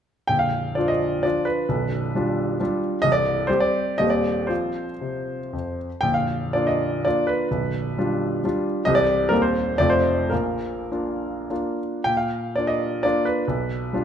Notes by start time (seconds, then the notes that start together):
0.27 A#0 A#1 G5
0.39 F5
0.75 F3 D4 F4 D5
0.88 D#5
1.23 F3 D4 F4 D5
1.45 B4
1.69 B0 B1
2.15 G3 D4 F4
2.60 G3 D4 F4
3.02 C1 C2 D#5
3.12 D5
3.47 G3 C4 G4 C5
3.60 D5
3.98 D#1 D#2 G3 C4 G4 D#5
4.10 D5
4.47 F3 C4 F4 C5
5.01 C3
5.53 F2
6.01 A#0 A#1 G5
6.14 F5
6.53 A#3 D4 F4 D5
6.67 D#5
7.05 A#3 D4 F4 D5
7.27 B4
7.51 B0 B1
7.98 G3 D4 F4
8.44 G3 D4 F4
8.85 C1 C2 G3 C4 G4 D#5
8.95 D5
9.29 D#1 D#2 G3 C4 G4 A#4
9.42 C5
9.78 F1 F2 A3 C4 F4 D5
9.90 C5
10.30 A#1 A#2 A#4
10.91 A#3 D4 F4
11.50 A#3 D4 F4
12.04 A#2 G5
12.17 F5
12.56 A#3 D4 F4 D5
12.67 D#5
13.03 A#3 D4 F4 D5
13.25 B4
13.48 B1
13.93 G3 D4 F4